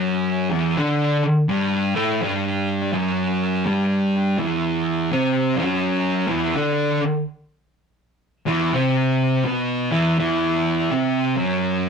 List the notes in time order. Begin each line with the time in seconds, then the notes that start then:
Already playing: F#2 F#3
0.50 E2 E3
0.77 D3 D4
1.49 G2 G3
1.95 A2 A3
2.21 G2 G3
2.93 F#2 F#3
3.66 G2 G3
4.38 E2 E3
5.11 C3 C4
5.56 F#2 F#3
6.28 E2 E3
6.55 D3 D4
8.46 E2 E3
8.73 C3 C4
9.45 B2 B3
9.91 E2 E3
10.18 E2 E3
10.91 C3 C4
11.36 F#2 F#3